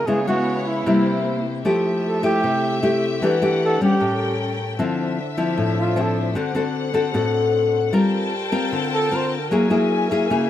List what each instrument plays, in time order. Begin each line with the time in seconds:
0.07 nylon-string guitar C#3 G#3 B3 E4, string section B3 E4 C#5, flugelhorn G#4
0.27 nylon-string guitar G#3 B3 E4, flugelhorn F#4
0.62 flugelhorn F#4
0.68 flugelhorn E4
0.86 nylon-string guitar C3 G3 A#3 E4, string section A#3 C5
1.65 nylon-string guitar F3 A3 E4 G4, string section A3 G4 E5
2.08 flugelhorn A4
2.23 nylon-string guitar A3 E4 G4, flugelhorn G4
2.43 nylon-string guitar C3
2.83 nylon-string guitar A3 E4 G4
3.22 nylon-string guitar E3 A3 D4 G4, string section D4 A4 F#5
3.42 nylon-string guitar A3 D4 G4
3.65 flugelhorn A4
3.81 nylon-string guitar G3 C#4, flugelhorn G4
3.99 nylon-string guitar A2, string section C#4 A4 A#4 G5
4.78 nylon-string guitar D3 F3 C4 E4, string section D4 C5 E5
5.37 nylon-string guitar F3 C4 E4
5.58 nylon-string guitar A2
5.79 flugelhorn F4
5.96 nylon-string guitar F3 C4 E4
6.01 flugelhorn A4
6.35 nylon-string guitar D3 C4 F#4 A4, string section F#5
6.55 nylon-string guitar C4 F#4 A4
6.94 nylon-string guitar C4 F#4 A4
7.14 nylon-string guitar A2 C4 F#4 A4
7.93 nylon-string guitar G3 C4 F4 A#4, string section F4 A#4 C5 G5 A5
8.52 nylon-string guitar C4 F4 A#4
8.72 nylon-string guitar D3
8.94 flugelhorn A4
9.11 nylon-string guitar C4 F4 A#4
9.16 flugelhorn C5
9.51 nylon-string guitar F#3 A#3 E4 G#4, string section F#4 E5 G#5
9.70 nylon-string guitar A#3 E4 G#4
10.11 nylon-string guitar A#3 E4 G#4
10.30 nylon-string guitar C#3 A#3 E4 G#4